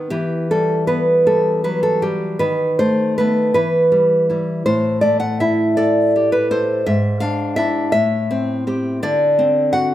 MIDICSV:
0, 0, Header, 1, 2, 480
1, 0, Start_track
1, 0, Key_signature, 1, "minor"
1, 0, Tempo, 790514
1, 68, Time_signature, 6, 3, 24, 8
1, 546, Tempo, 756620
1, 2466, Tempo, 729927
1, 5346, Tempo, 701754
1, 6468, End_track
2, 0, Start_track
2, 0, Title_t, "Nylon-string guitar"
2, 0, Program_c, 0, 24
2, 63, Note_on_c, 0, 67, 83
2, 67, Note_on_c, 0, 52, 67
2, 296, Note_off_c, 0, 67, 0
2, 309, Note_on_c, 0, 69, 75
2, 311, Note_on_c, 0, 55, 54
2, 528, Note_off_c, 0, 69, 0
2, 530, Note_on_c, 0, 71, 81
2, 535, Note_on_c, 0, 59, 58
2, 770, Note_off_c, 0, 71, 0
2, 771, Note_off_c, 0, 55, 0
2, 778, Note_on_c, 0, 55, 58
2, 780, Note_on_c, 0, 69, 80
2, 1014, Note_off_c, 0, 69, 0
2, 1017, Note_on_c, 0, 71, 84
2, 1020, Note_on_c, 0, 54, 49
2, 1132, Note_off_c, 0, 71, 0
2, 1135, Note_on_c, 0, 69, 76
2, 1251, Note_off_c, 0, 55, 0
2, 1256, Note_off_c, 0, 59, 0
2, 1258, Note_on_c, 0, 55, 53
2, 1258, Note_on_c, 0, 67, 75
2, 1265, Note_off_c, 0, 69, 0
2, 1487, Note_off_c, 0, 52, 0
2, 1494, Note_off_c, 0, 67, 0
2, 1494, Note_on_c, 0, 71, 89
2, 1499, Note_on_c, 0, 51, 67
2, 1505, Note_off_c, 0, 55, 0
2, 1507, Note_off_c, 0, 54, 0
2, 1730, Note_off_c, 0, 71, 0
2, 1745, Note_on_c, 0, 72, 89
2, 1750, Note_on_c, 0, 57, 54
2, 1978, Note_off_c, 0, 72, 0
2, 1992, Note_on_c, 0, 71, 89
2, 1994, Note_off_c, 0, 57, 0
2, 2001, Note_on_c, 0, 57, 50
2, 2005, Note_on_c, 0, 59, 59
2, 2201, Note_off_c, 0, 51, 0
2, 2212, Note_off_c, 0, 57, 0
2, 2214, Note_off_c, 0, 59, 0
2, 2216, Note_off_c, 0, 71, 0
2, 2224, Note_on_c, 0, 71, 93
2, 2229, Note_on_c, 0, 52, 69
2, 2461, Note_on_c, 0, 55, 57
2, 2708, Note_off_c, 0, 55, 0
2, 2709, Note_on_c, 0, 64, 52
2, 2716, Note_on_c, 0, 55, 52
2, 2918, Note_off_c, 0, 71, 0
2, 2924, Note_off_c, 0, 64, 0
2, 2925, Note_off_c, 0, 52, 0
2, 2927, Note_off_c, 0, 55, 0
2, 2947, Note_on_c, 0, 72, 91
2, 2950, Note_on_c, 0, 45, 75
2, 3176, Note_off_c, 0, 72, 0
2, 3181, Note_on_c, 0, 74, 85
2, 3187, Note_on_c, 0, 57, 55
2, 3299, Note_off_c, 0, 74, 0
2, 3302, Note_on_c, 0, 78, 87
2, 3426, Note_off_c, 0, 78, 0
2, 3437, Note_on_c, 0, 76, 90
2, 3442, Note_on_c, 0, 64, 60
2, 3668, Note_off_c, 0, 76, 0
2, 3678, Note_on_c, 0, 74, 93
2, 3682, Note_on_c, 0, 69, 65
2, 3919, Note_off_c, 0, 57, 0
2, 3934, Note_on_c, 0, 67, 53
2, 4027, Note_off_c, 0, 74, 0
2, 4042, Note_on_c, 0, 71, 83
2, 4156, Note_off_c, 0, 69, 0
2, 4159, Note_off_c, 0, 71, 0
2, 4163, Note_on_c, 0, 69, 60
2, 4165, Note_off_c, 0, 64, 0
2, 4166, Note_on_c, 0, 72, 93
2, 4370, Note_off_c, 0, 45, 0
2, 4389, Note_off_c, 0, 72, 0
2, 4398, Note_off_c, 0, 69, 0
2, 4399, Note_on_c, 0, 44, 75
2, 4399, Note_on_c, 0, 76, 97
2, 4403, Note_off_c, 0, 67, 0
2, 4621, Note_on_c, 0, 77, 94
2, 4623, Note_off_c, 0, 76, 0
2, 4630, Note_on_c, 0, 62, 60
2, 4854, Note_off_c, 0, 77, 0
2, 4857, Note_on_c, 0, 76, 100
2, 4858, Note_off_c, 0, 62, 0
2, 4866, Note_on_c, 0, 62, 59
2, 4868, Note_on_c, 0, 64, 59
2, 5084, Note_off_c, 0, 62, 0
2, 5084, Note_off_c, 0, 64, 0
2, 5085, Note_off_c, 0, 76, 0
2, 5090, Note_off_c, 0, 44, 0
2, 5093, Note_on_c, 0, 76, 102
2, 5102, Note_on_c, 0, 45, 75
2, 5347, Note_on_c, 0, 60, 68
2, 5588, Note_off_c, 0, 60, 0
2, 5595, Note_on_c, 0, 60, 53
2, 5598, Note_on_c, 0, 67, 59
2, 5802, Note_off_c, 0, 76, 0
2, 5811, Note_off_c, 0, 45, 0
2, 5815, Note_off_c, 0, 60, 0
2, 5816, Note_off_c, 0, 67, 0
2, 5838, Note_on_c, 0, 50, 69
2, 5841, Note_on_c, 0, 74, 102
2, 6086, Note_on_c, 0, 60, 60
2, 6295, Note_off_c, 0, 74, 0
2, 6318, Note_on_c, 0, 78, 92
2, 6326, Note_on_c, 0, 66, 59
2, 6468, Note_off_c, 0, 50, 0
2, 6468, Note_off_c, 0, 60, 0
2, 6468, Note_off_c, 0, 66, 0
2, 6468, Note_off_c, 0, 78, 0
2, 6468, End_track
0, 0, End_of_file